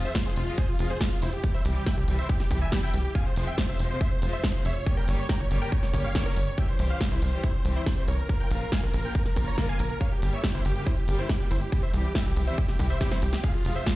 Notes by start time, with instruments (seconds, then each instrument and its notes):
0.04 supersaw synth C5 E5, closed hi-hat
0.15 string section C3 F3 G#3 F4, supersaw synth F4, kick, snare, closed hi-hat
0.25 analog synth bass F1, string section C3 F3 G#3 F4, supersaw synth G#4 C5, closed hi-hat
0.36 analog synth bass F1, string section C3 F3 G#3 F4, supersaw synth F4, open hi-hat
0.47 string section C3 F3 G#3 F4, supersaw synth F4, closed hi-hat
0.58 supersaw synth G#4 C5, kick, closed hi-hat
0.69 supersaw synth F4, closed hi-hat
0.79 analog synth bass F1, string section C3 F3 G#3 F4, supersaw synth F4, open hi-hat
0.90 supersaw synth G#4 C5, closed hi-hat
1.01 string section C3 F3 G#3 F4, supersaw synth F4, kick, snare, closed hi-hat
1.11 supersaw synth F4, closed hi-hat
1.22 analog synth bass F1, supersaw synth E4 C5, open hi-hat
1.33 supersaw synth G4, closed hi-hat
1.44 string section C3 E3 G3 E4, supersaw synth G4, kick, closed hi-hat
1.54 supersaw synth C5 E5, closed hi-hat
1.65 analog synth bass C2, string section C3 E3 G3 E4, supersaw synth G4, open hi-hat
1.76 supersaw synth G4, closed hi-hat
1.86 string section C3 E3 G3 E4, supersaw synth E5 G5, kick, snare, closed hi-hat
1.97 analog synth bass C2, string section C3 E3 G3 E4, supersaw synth G4, closed hi-hat
2.08 analog synth bass C2, string section C3 E3 G3 E4, supersaw synth G4, open hi-hat
2.18 string section C3 E3 G3 E4, supersaw synth C5 E5, closed hi-hat
2.29 supersaw synth G4, kick, closed hi-hat
2.40 supersaw synth G4, snare, closed hi-hat
2.51 analog synth bass C2, string section C3 E3 G3 E4, supersaw synth G4, kick, open hi-hat
2.61 supersaw synth E5 G#5, closed hi-hat
2.72 string section C3 E3 G3 E4, supersaw synth G4, kick, snare, closed hi-hat
2.83 supersaw synth E5 G5, closed hi-hat
2.94 analog synth bass C2, supersaw synth G4, open hi-hat
3.04 supersaw synth G4, closed hi-hat
3.15 string section C3 F3 G#3 F4, supersaw synth F5 G#5, kick, closed hi-hat
3.26 supersaw synth C5, closed hi-hat
3.36 analog synth bass F1, string section C3 F3 G#3 F4, supersaw synth C5, open hi-hat
3.47 supersaw synth E5 G5, closed hi-hat
3.58 string section C3 F3 G#3 F4, supersaw synth C5, kick, snare, closed hi-hat
3.69 analog synth bass F1, string section C3 F3 G#3 F4, supersaw synth C5 E5, closed hi-hat
3.79 analog synth bass F1, string section C3 F3 G#3 F4, supersaw synth C5, open hi-hat
3.90 string section C3 F3 G#3 F4, supersaw synth C5, closed hi-hat
4.01 supersaw synth C5 E5, kick, closed hi-hat
4.12 supersaw synth C5, closed hi-hat
4.22 analog synth bass F1, string section C3 F3 G#3 F4, supersaw synth C5, open hi-hat
4.33 supersaw synth C5 E5, closed hi-hat
4.44 string section C3 F3 G#3 F4, supersaw synth C5, kick, snare, closed hi-hat
4.54 supersaw synth C5, closed hi-hat
4.65 analog synth bass F1, supersaw synth C#5 E5, open hi-hat
4.76 supersaw synth C#5, closed hi-hat
4.86 string section C#3 G3 A#3 G4, supersaw synth C#5, kick, closed hi-hat
4.97 supersaw synth A#4 G5, closed hi-hat
5.08 analog synth bass G1, string section C#3 G3 A#3 G4, supersaw synth C#5, open hi-hat
5.19 supersaw synth C#5, closed hi-hat
5.29 string section C#3 G3 A#3 G4, supersaw synth G5 A#5, kick, snare, closed hi-hat
5.40 analog synth bass G1, string section C#3 G3 A#3 G4, supersaw synth C#5, closed hi-hat
5.51 analog synth bass G1, string section C#3 G3 A#3 G4, supersaw synth C#5, open hi-hat
5.61 string section C#3 G3 A#3 G4, supersaw synth A#4 G5, closed hi-hat
5.72 supersaw synth C#5, kick, closed hi-hat
5.83 supersaw synth C#5, snare, closed hi-hat
5.94 analog synth bass G1, string section C#3 G3 A#3 G4, supersaw synth C#5, kick, open hi-hat
6.04 supersaw synth C#5 F5, closed hi-hat
6.15 string section C#3 G3 A#3 G4, supersaw synth C#5, kick, snare, closed hi-hat
6.26 supersaw synth A#4 C#5, closed hi-hat
6.36 analog synth bass G1, supersaw synth C#5, open hi-hat
6.47 supersaw synth C#5, closed hi-hat
6.58 string section E3 G3 C4 G4, supersaw synth E5 G5, kick, closed hi-hat
6.68 supersaw synth C5, closed hi-hat
6.79 analog synth bass C2, string section E3 G3 C4 G4, supersaw synth C5, open hi-hat
6.90 supersaw synth C5 F5
7.01 string section E3 G3 C4 G4, supersaw synth C5, kick, snare, closed hi-hat
7.11 analog synth bass C2, string section E3 G3 C4 G4, supersaw synth E4 C5, closed hi-hat
7.22 analog synth bass C2, string section E3 G3 C4 G4, supersaw synth C5, open hi-hat
7.33 string section E3 G3 C4 G4, supersaw synth C5, closed hi-hat
7.43 supersaw synth E4 C5, kick, closed hi-hat
7.54 supersaw synth C5, closed hi-hat
7.65 analog synth bass C2, string section E3 G3 C4 G4, supersaw synth C5, open hi-hat
7.76 supersaw synth E4 C5
7.86 string section E3 G3 C4 G4, supersaw synth C5, kick, snare, closed hi-hat
7.97 supersaw synth C5, closed hi-hat
8.08 analog synth bass C2, supersaw synth A#4 C#5, open hi-hat
8.19 supersaw synth A#4, closed hi-hat
8.29 string section C#3 F3 A#3 F4, supersaw synth A#4, kick, closed hi-hat
8.40 supersaw synth A#4 G5, closed hi-hat
8.51 analog synth bass A#1, string section C#3 F3 A#3 F4, supersaw synth A#4, open hi-hat
8.61 supersaw synth A#4, closed hi-hat
8.72 string section C#3 F3 A#3 F4, supersaw synth F5 G#5, kick, snare, closed hi-hat
8.83 analog synth bass A#1, string section C#3 F3 A#3 F4, supersaw synth A#4, closed hi-hat
8.93 analog synth bass A#1, string section C#3 F3 A#3 F4, supersaw synth A#4, open hi-hat
9.04 string section C#3 F3 A#3 F4, supersaw synth A#4 G5, closed hi-hat
9.15 supersaw synth A#4, kick, closed hi-hat
9.26 supersaw synth A#4, snare, closed hi-hat
9.36 analog synth bass A#1, string section C#3 F3 A#3 F4, supersaw synth A#4, kick, open hi-hat
9.47 supersaw synth C#5 A#5, closed hi-hat
9.58 string section C#3 F3 A#3 F4, supersaw synth A#4, kick, snare, closed hi-hat
9.69 supersaw synth F5 G#5, closed hi-hat
9.79 analog synth bass A#1, supersaw synth A#4, open hi-hat
9.90 supersaw synth A#4, closed hi-hat
10.01 string section C#3 G3 A#3 G4, supersaw synth C#5 F5, kick, closed hi-hat
10.12 supersaw synth G4, closed hi-hat
10.22 analog synth bass G1, string section C#3 G3 A#3 G4, supersaw synth G4, open hi-hat
10.33 supersaw synth C#5 E5, closed hi-hat
10.44 string section C#3 G3 A#3 G4, supersaw synth G4, kick, snare, closed hi-hat
10.54 analog synth bass G1, string section C#3 G3 A#3 G4, supersaw synth E4 C5, closed hi-hat
10.65 analog synth bass G1, string section C#3 G3 A#3 G4, supersaw synth G4, open hi-hat
10.76 string section C#3 G3 A#3 G4, supersaw synth G4, closed hi-hat
10.87 supersaw synth E4 C5, kick, closed hi-hat
10.97 supersaw synth G4, closed hi-hat
11.08 analog synth bass G1, string section C#3 G3 A#3 G4, supersaw synth G4, open hi-hat
11.19 supersaw synth E4 C5, closed hi-hat
11.29 string section C#3 G3 A#3 G4, supersaw synth G4, kick, snare, closed hi-hat
11.40 supersaw synth G4, closed hi-hat
11.51 analog synth bass G1, supersaw synth E4 C5, open hi-hat
11.62 supersaw synth G4, closed hi-hat
11.72 string section C3 E3 G3 E4, supersaw synth G4, kick, closed hi-hat
11.83 supersaw synth C5 E5, closed hi-hat
11.94 analog synth bass C2, string section C3 E3 G3 E4, supersaw synth G4, open hi-hat
12.04 supersaw synth G4, closed hi-hat
12.15 string section C3 E3 G3 E4, supersaw synth E5 G5, kick, snare, closed hi-hat
12.26 analog synth bass C2, string section C3 E3 G3 E4, supersaw synth G4, closed hi-hat
12.36 analog synth bass C2, string section C3 E3 G3 E4, supersaw synth G4, open hi-hat
12.47 string section C3 E3 G3 E4, supersaw synth C5 E5, closed hi-hat
12.58 supersaw synth G4, kick, closed hi-hat
12.69 supersaw synth G4, snare, closed hi-hat
12.79 analog synth bass C2, string section C3 E3 G3 E4, supersaw synth G4, kick, open hi-hat
12.90 supersaw synth C5 E5, closed hi-hat
13.01 string section C3 E3 G3 E4, supersaw synth G4, kick, snare, closed hi-hat
13.11 supersaw synth E4 C5, snare, closed hi-hat
13.22 analog synth bass C2, supersaw synth G4, open hi-hat
13.33 supersaw synth G4, snare, closed hi-hat
13.43 string section C3 F3 G#3 F4, supersaw synth G#4 F5, kick, closed hi-hat, crash
13.54 supersaw synth F4, closed hi-hat
13.65 analog synth bass F1, string section C3 F3 G#3 F4, supersaw synth F4, open hi-hat
13.75 supersaw synth C5 E5, closed hi-hat
13.86 string section C3 F3 G#3 F4, supersaw synth F4, kick, snare, closed hi-hat